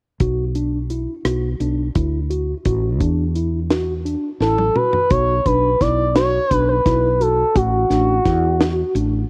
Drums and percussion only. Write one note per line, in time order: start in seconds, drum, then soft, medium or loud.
0.20 kick medium
0.20 closed hi-hat medium
0.55 closed hi-hat soft
0.90 closed hi-hat soft
1.25 cross-stick medium
1.25 closed hi-hat medium
1.60 closed hi-hat soft
1.95 kick medium
1.95 closed hi-hat medium
2.31 closed hi-hat medium
2.65 kick medium
2.65 closed hi-hat medium
3.01 kick medium
3.01 closed hi-hat medium
3.35 closed hi-hat soft
3.71 snare medium
3.71 closed hi-hat medium
4.06 closed hi-hat soft
4.41 snare soft
4.58 high tom soft
4.76 mid tom medium
4.93 floor tom medium
5.10 kick medium
5.10 closed hi-hat medium
5.46 kick medium
5.46 closed hi-hat medium
5.81 kick medium
5.81 snare soft
5.81 closed hi-hat medium
6.16 snare medium
6.16 closed hi-hat medium
6.51 kick medium
6.51 closed hi-hat medium
6.86 kick medium
6.86 snare soft
6.86 closed hi-hat medium
7.21 closed hi-hat medium
7.56 kick medium
7.56 closed hi-hat medium
7.91 snare soft
7.91 closed hi-hat medium
8.26 kick medium
8.26 snare soft
8.26 closed hi-hat medium
8.61 snare loud
8.61 closed hi-hat medium
8.96 closed hi-hat medium